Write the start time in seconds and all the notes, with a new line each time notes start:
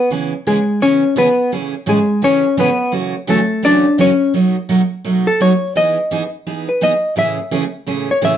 0.10 C#3 E3 B3 C#4 G#4
0.47 C#3 E3 G#3 B3 C#4 G#4
0.81 C#3 E3 B3 C#4 G#4 C#5
1.16 C#3 E3 B3 C#4 G#4 B4
1.52 A2 C#3 E3 A3 C#4 G#4
1.86 A2 C#3 E3 G#3 A3 C#4 G#4
2.22 A2 C#3 E3 A3 C#4 G#4 C#5
2.57 A2 C#3 E3 A3 B3 C#4 G#4 B4
2.92 F#2 C#3 E3 A3 C#4 F#4
3.27 F#2 C#3 E3 A3 C#4 F#4 A4
3.63 F#2 C#3 E3 A3 C#4 D4 F#4 D5
3.98 F#2 C#3 E3 A3 C#4 F#4 C#5
4.34 B2 F#3 A3 D#4 F#4
4.69 B2 F#3 A3 D#4 F#4
5.04 B2 F#3 A3 D#4 F#4
5.27 A4
5.40 B2 F#3 A3 D#4 F#4 C#5
5.75 E3 B3 D#4 G#4 D#5
6.11 E3 B3 D#4 G#4
6.47 E3 B3 D#4 G#4
6.69 B4
6.81 E3 B3 D#4 G#4 D#5
7.16 A2 C#3 E3 A3 C#4 G#4 E5
7.51 A2 C#3 E3 A3 C#4 G#4
7.87 A2 C#3 E3 A3 C#4 G#4
8.11 C#5
8.21 A2 C#3 E3 A3 C#4 G#4 E5